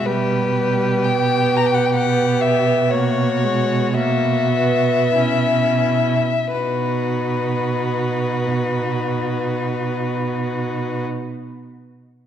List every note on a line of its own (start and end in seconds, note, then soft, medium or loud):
0.06 6.18 B2 soft
0.06 0.54 G3 soft
0.06 2.91 G4 soft
0.06 1.06 B4 soft
0.55 1.05 G3 soft
1.04 1.96 B3 soft
1.04 1.58 G5 medium
1.56 1.68 A#5 soft
1.66 1.76 G5 soft
1.74 1.87 F#5 soft
1.85 1.94 G5 soft
1.95 2.94 B3 soft
1.95 2.42 F#5 medium
2.41 2.92 E5 medium
2.91 3.45 A#3 soft
2.91 3.94 F#4 soft
2.91 3.96 C#5 medium
3.44 3.98 G#3 soft
3.94 4.52 A#3 soft
3.94 5.12 F#4 soft
3.94 6.53 E5 medium
4.53 5.16 B3 soft
5.15 6.23 C#4 soft
5.15 6.21 E4 soft
6.54 11.04 B2 soft
6.54 11.04 D#4 soft
6.54 11.05 F#4 soft
6.54 11.04 B4 soft